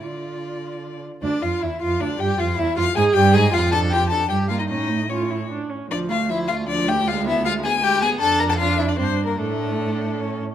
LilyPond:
<<
  \new Staff \with { instrumentName = "Violin" } { \time 3/4 \key d \minor \tempo 4 = 154 d''2~ d''8 r8 | d''8 f''8 e''8 f''8 d''8 g''8 | f''8 e''8 f''8 aes''8 g''8 aes''8 | f''8 a''8 g''8 a''8 g''8 f''16 ees''16 |
ees''4 cis''4 r4 | d''8 f''8 e''8 f''8 d''8 g''8 | f''8 e''8 f''8 aes''8 g''8 aes''8 | a''8 bes''16 a''16 f''8 e''16 d''16 \tuplet 3/2 { c''4 bes'8 } |
a'2~ a'8 r8 | }
  \new Staff \with { instrumentName = "Violin" } { \time 3/4 \key d \minor f'2~ f'8 r8 | d'8 f'8 e'8 f'8 d'8 g'8 | f'8 e'8 f'8 aes'8 g'8 aes'8 | f'8 a'8 g'8 a'8 g'8 f'16 ees'16 |
ees'4 cis'4 r4 | d'8 f'8 e'8 f'8 d'8 g'8 | f'8 e'8 f'8 aes'8 g'8 aes'8 | a'8 bes'16 a'16 f'8 e'16 d'16 \tuplet 3/2 { c'4 bes8 } |
a2~ a8 r8 | }
  \new Staff \with { instrumentName = "Viola" } { \time 3/4 \key d \minor f'2~ f'8 r8 | d'8 f'8 e'8 f'8 d'8 g'8 | f'8 e'8 f'8 aes'8 g'8 aes'8 | f'8 d'8 f'8 d'8 g8 bes8 |
cis'8 a8 f'8 e'8 d'8 cis'8 | f8 a8 f8 a8 f8 a8 | aes8 b8 aes8 b8 aes8 b8 | d'4 d'4 d'4 |
d'2 cis'8 r8 | }
  \new Staff \with { instrumentName = "Cello" } { \clef bass \time 3/4 \key d \minor d2~ d8 r8 | d,8 f,8 e,8 f,8 d,8 g,8 | f,8 e,8 f,8 aes,8 g,8 aes,8 | f,2 g,4 |
a,2~ a,8 r8 | d,2.~ | d,2. | f,2 g,4 |
a,2~ a,8 r8 | }
>>